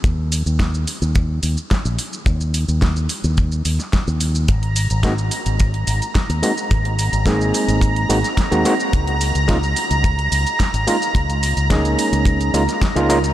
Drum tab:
HH |--o---o---o---o-|--o---o---o---o-|xxoxx-oxxxoxxxo-|xxoxx-oxxxoxxxo-|
SH |x-xxxxxxx-xxxxxx|xxxxxxxxxxxxxxxx|x-xxxxxxx-xxxxxx|x-xxxxxxx-xxxxxx|
SD |----o-------o---|----o------oo---|----o-------o---|----o------oo---|
BD |o---o---o---o---|o---o---o---o---|o---o---o---o---|o---o---o---o---|

HH |xxoxx-oxxxoxxxo-|xxoxxxoxxxoxxxox|
SH |x-xxxxxxx-xxxxxx|xxxxxxxxxxxxxxxx|
SD |----o-------o---|----o------oo---|
BD |o---o---o---o---|o---o---o---o---|